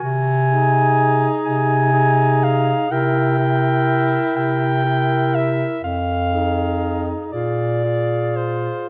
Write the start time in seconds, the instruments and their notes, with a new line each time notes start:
0.00 bass clarinet C3, soprano saxophone G#5
0.50 tenor saxophone D#4, clarinet G#4
1.45 bass clarinet C3, soprano saxophone G#5
1.92 tenor saxophone D#4, clarinet G#4
2.44 soprano saxophone F5
2.90 bass clarinet C3, tenor saxophone E4, clarinet A#4, soprano saxophone G5
3.39 tenor saxophone E4, clarinet A#4
4.35 bass clarinet C3, soprano saxophone G5
4.85 tenor saxophone E4, clarinet A#4
5.35 soprano saxophone E5
5.82 bass clarinet F2, soprano saxophone F5
6.32 tenor saxophone D#4, clarinet G#4
7.32 bass clarinet A#2, tenor saxophone F4, clarinet G#4, soprano saxophone D5
7.84 tenor saxophone F4, clarinet G#4
8.36 soprano saxophone C5